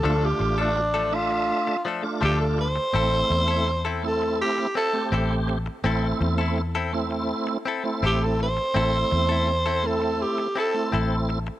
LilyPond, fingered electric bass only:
\new Staff \with { instrumentName = "Fingered electric bass" } { \clef bass \time 4/4 \key a \minor \tempo 4 = 83 d,8 a,,2 r8 d,4 | a,,8 e,2 r8 a,,4 | a,,8 e,2 r8 a,,4 | a,,8 e,2 r8 a,,4 | }